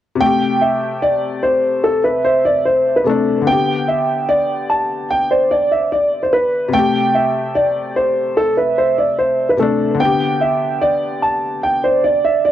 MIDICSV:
0, 0, Header, 1, 4, 480
1, 0, Start_track
1, 0, Key_signature, 0, "minor"
1, 0, Tempo, 408163
1, 242, Time_signature, 4, 2, 24, 8
1, 14722, End_track
2, 0, Start_track
2, 0, Title_t, "Soft synth lead"
2, 0, Program_c, 0, 80
2, 484, Note_on_c, 0, 79, 86
2, 1636, Note_off_c, 0, 79, 0
2, 2399, Note_on_c, 0, 76, 87
2, 3553, Note_off_c, 0, 76, 0
2, 4323, Note_on_c, 0, 79, 83
2, 5475, Note_off_c, 0, 79, 0
2, 6244, Note_on_c, 0, 74, 90
2, 7396, Note_off_c, 0, 74, 0
2, 8161, Note_on_c, 0, 79, 86
2, 9314, Note_off_c, 0, 79, 0
2, 10081, Note_on_c, 0, 76, 89
2, 11234, Note_off_c, 0, 76, 0
2, 12005, Note_on_c, 0, 79, 85
2, 13156, Note_off_c, 0, 79, 0
2, 13923, Note_on_c, 0, 74, 91
2, 14722, Note_off_c, 0, 74, 0
2, 14722, End_track
3, 0, Start_track
3, 0, Title_t, "Grand piano"
3, 0, Program_c, 1, 0
3, 241, Note_on_c, 1, 79, 108
3, 693, Note_off_c, 1, 79, 0
3, 719, Note_on_c, 1, 76, 72
3, 1172, Note_off_c, 1, 76, 0
3, 1203, Note_on_c, 1, 74, 90
3, 1654, Note_off_c, 1, 74, 0
3, 1679, Note_on_c, 1, 72, 86
3, 2132, Note_off_c, 1, 72, 0
3, 2161, Note_on_c, 1, 69, 91
3, 2367, Note_off_c, 1, 69, 0
3, 2400, Note_on_c, 1, 71, 80
3, 2607, Note_off_c, 1, 71, 0
3, 2641, Note_on_c, 1, 72, 91
3, 2847, Note_off_c, 1, 72, 0
3, 2883, Note_on_c, 1, 74, 83
3, 3088, Note_off_c, 1, 74, 0
3, 3122, Note_on_c, 1, 72, 81
3, 3460, Note_off_c, 1, 72, 0
3, 3482, Note_on_c, 1, 71, 76
3, 3585, Note_off_c, 1, 71, 0
3, 3604, Note_on_c, 1, 69, 81
3, 4054, Note_off_c, 1, 69, 0
3, 4081, Note_on_c, 1, 79, 108
3, 4533, Note_off_c, 1, 79, 0
3, 4563, Note_on_c, 1, 76, 77
3, 5014, Note_off_c, 1, 76, 0
3, 5040, Note_on_c, 1, 74, 92
3, 5492, Note_off_c, 1, 74, 0
3, 5521, Note_on_c, 1, 81, 77
3, 5973, Note_off_c, 1, 81, 0
3, 6003, Note_on_c, 1, 79, 89
3, 6208, Note_off_c, 1, 79, 0
3, 6242, Note_on_c, 1, 72, 77
3, 6448, Note_off_c, 1, 72, 0
3, 6480, Note_on_c, 1, 74, 82
3, 6687, Note_off_c, 1, 74, 0
3, 6721, Note_on_c, 1, 76, 77
3, 6927, Note_off_c, 1, 76, 0
3, 6963, Note_on_c, 1, 74, 82
3, 7301, Note_off_c, 1, 74, 0
3, 7323, Note_on_c, 1, 72, 73
3, 7426, Note_off_c, 1, 72, 0
3, 7441, Note_on_c, 1, 71, 89
3, 7893, Note_off_c, 1, 71, 0
3, 7919, Note_on_c, 1, 79, 113
3, 8372, Note_off_c, 1, 79, 0
3, 8402, Note_on_c, 1, 76, 75
3, 8853, Note_off_c, 1, 76, 0
3, 8881, Note_on_c, 1, 74, 86
3, 9332, Note_off_c, 1, 74, 0
3, 9363, Note_on_c, 1, 72, 83
3, 9814, Note_off_c, 1, 72, 0
3, 9843, Note_on_c, 1, 69, 96
3, 10048, Note_off_c, 1, 69, 0
3, 10080, Note_on_c, 1, 71, 77
3, 10287, Note_off_c, 1, 71, 0
3, 10324, Note_on_c, 1, 72, 86
3, 10529, Note_off_c, 1, 72, 0
3, 10561, Note_on_c, 1, 74, 80
3, 10767, Note_off_c, 1, 74, 0
3, 10801, Note_on_c, 1, 72, 79
3, 11140, Note_off_c, 1, 72, 0
3, 11163, Note_on_c, 1, 71, 78
3, 11265, Note_off_c, 1, 71, 0
3, 11282, Note_on_c, 1, 69, 83
3, 11733, Note_off_c, 1, 69, 0
3, 11761, Note_on_c, 1, 79, 103
3, 12213, Note_off_c, 1, 79, 0
3, 12241, Note_on_c, 1, 76, 80
3, 12692, Note_off_c, 1, 76, 0
3, 12718, Note_on_c, 1, 74, 92
3, 13171, Note_off_c, 1, 74, 0
3, 13201, Note_on_c, 1, 81, 82
3, 13652, Note_off_c, 1, 81, 0
3, 13682, Note_on_c, 1, 79, 86
3, 13888, Note_off_c, 1, 79, 0
3, 13922, Note_on_c, 1, 72, 78
3, 14128, Note_off_c, 1, 72, 0
3, 14160, Note_on_c, 1, 74, 80
3, 14367, Note_off_c, 1, 74, 0
3, 14401, Note_on_c, 1, 76, 79
3, 14607, Note_off_c, 1, 76, 0
3, 14641, Note_on_c, 1, 74, 84
3, 14722, Note_off_c, 1, 74, 0
3, 14722, End_track
4, 0, Start_track
4, 0, Title_t, "Felt piano"
4, 0, Program_c, 2, 0
4, 182, Note_on_c, 2, 48, 63
4, 245, Note_on_c, 2, 57, 62
4, 307, Note_on_c, 2, 67, 74
4, 441, Control_c, 2, 64, 127
4, 3525, Note_off_c, 2, 48, 0
4, 3556, Note_off_c, 2, 57, 0
4, 3576, Note_on_c, 2, 48, 50
4, 3587, Note_off_c, 2, 67, 0
4, 3608, Note_on_c, 2, 57, 46
4, 3639, Note_on_c, 2, 62, 54
4, 4017, Note_on_c, 2, 50, 64
4, 4069, Note_off_c, 2, 48, 0
4, 4078, Note_on_c, 2, 59, 58
4, 4085, Note_off_c, 2, 57, 0
4, 4095, Control_c, 2, 64, 0
4, 4100, Note_off_c, 2, 62, 0
4, 4142, Note_on_c, 2, 67, 73
4, 4336, Control_c, 2, 64, 127
4, 7842, Note_off_c, 2, 50, 0
4, 7860, Note_on_c, 2, 48, 64
4, 7873, Note_off_c, 2, 59, 0
4, 7905, Note_off_c, 2, 67, 0
4, 7923, Note_on_c, 2, 57, 63
4, 7936, Control_c, 2, 64, 0
4, 7985, Note_on_c, 2, 67, 76
4, 8129, Control_c, 2, 64, 127
4, 11204, Note_off_c, 2, 48, 0
4, 11236, Note_off_c, 2, 57, 0
4, 11255, Note_on_c, 2, 48, 49
4, 11267, Note_off_c, 2, 67, 0
4, 11287, Note_on_c, 2, 57, 48
4, 11318, Note_on_c, 2, 62, 57
4, 11695, Note_on_c, 2, 50, 66
4, 11748, Note_off_c, 2, 48, 0
4, 11758, Note_on_c, 2, 59, 55
4, 11764, Note_off_c, 2, 57, 0
4, 11778, Control_c, 2, 64, 0
4, 11780, Note_off_c, 2, 62, 0
4, 11820, Note_on_c, 2, 67, 72
4, 11957, Control_c, 2, 64, 127
4, 14722, Note_off_c, 2, 50, 0
4, 14722, Note_off_c, 2, 59, 0
4, 14722, Note_off_c, 2, 67, 0
4, 14722, End_track
0, 0, End_of_file